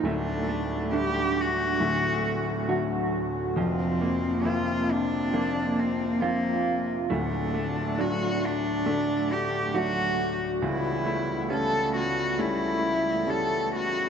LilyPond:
<<
  \new Staff \with { instrumentName = "Cello" } { \time 4/4 \key d \phrygian \tempo 4 = 68 d'4 g'8 fis'4. r4 | c'4 f'8 d'4 c'8 bes8. r16 | d'4 fis'8 d'4 g'8 fis'8. r16 | e'4 a'8 fis'8 e'4 a'8 fis'8 | }
  \new Staff \with { instrumentName = "Clean electric guitar" } { \time 4/4 \key d \phrygian a8 a8 d'4 a4 fis'4 | f8 bes8 c'4 bes4 f'4 | a8 a8 d'4 a4 fis'4 | e8 a8 cis'4 a2 | }
  \new Staff \with { instrumentName = "Upright piano" } { \clef bass \time 4/4 \key d \phrygian <d,, d,>4 <d g a>4 <d,, d,>4 <d fis a>4 | <f,, f,>4 <f bes c'>4 <f bes c'>4 <f bes c'>4 | <d,, d,>4 <fis a d'>4 <d a d'>4 <fis a d'>4 | cis,4 <g a cis'>4 <g a cis'>4 <g a cis'>4 | }
  \new Staff \with { instrumentName = "Harmonium" } { \clef bass \time 4/4 \key d \phrygian << { <d g>2 <d fis'>2 | <c f'>1 | <d fis''>1 | <cis g>1 | } \\ { <d, a>1 | <f, bes>1 | <d, a>1 | <cis, b>1 | } >> }
>>